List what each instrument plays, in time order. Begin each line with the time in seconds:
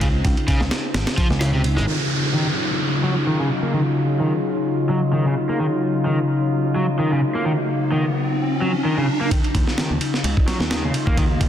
Already playing: picked electric bass C#2, ambient pad C#3 C4 D#4 F4
0.01 overdriven electric guitar C#3, kick, ride
0.25 picked electric bass C#2, kick, ride
0.37 ride
0.48 overdriven electric guitar C#3, kick, ride
0.61 picked electric bass C#2, snare
0.71 snare, ride
0.94 picked electric bass G#1, snare, ride
1.07 snare, ride
1.17 overdriven electric guitar F3, kick, ride
1.30 picked electric bass C#2, snare
1.40 overdriven electric guitar C#3, snare, ride
1.53 overdriven electric guitar C3
1.64 ride
1.77 picked electric bass G#1, overdriven electric guitar G#3, snare
1.87 ambient pad C#3 F#3 D#4 F4, overdriven electric guitar D#3, downlifter
2.34 overdriven electric guitar D#3
3.03 overdriven electric guitar F#3
3.27 overdriven electric guitar D#3
3.40 overdriven electric guitar C#3
3.63 overdriven electric guitar A#3
3.73 overdriven electric guitar D#3
4.20 overdriven electric guitar D#3
4.89 overdriven electric guitar F#3
5.13 overdriven electric guitar D#3
5.26 overdriven electric guitar C#3
5.49 overdriven electric guitar A#3
5.59 overdriven electric guitar D#3, riser
6.06 overdriven electric guitar D#3
6.76 overdriven electric guitar F#3
6.99 overdriven electric guitar D#3
7.12 overdriven electric guitar C#3
7.35 overdriven electric guitar A#3
7.45 overdriven electric guitar D#3
7.92 overdriven electric guitar D#3
8.61 overdriven electric guitar F#3
8.85 overdriven electric guitar D#3
8.98 overdriven electric guitar C#3
9.21 overdriven electric guitar A#3
9.31 ambient pad C#3 F#3 D#4 F4, overdriven electric guitar D#3, kick, ride, riser
9.44 ride
9.55 picked electric bass D#2, kick, ride
9.67 snare
9.78 overdriven electric guitar D#3, snare, ride
9.91 picked electric bass D#2
10.01 ride
10.14 snare
10.24 picked electric bass C#2, ride
10.37 kick
10.48 overdriven electric guitar F#3, snare, ride
10.60 picked electric bass D#2, snare
10.71 overdriven electric guitar D#3, snare, ride
10.84 overdriven electric guitar C#3
10.94 ride
11.07 picked electric bass D#2, overdriven electric guitar A#3, kick
11.17 overdriven electric guitar D#3, kick, ride
11.41 picked electric bass D#2, kick, ride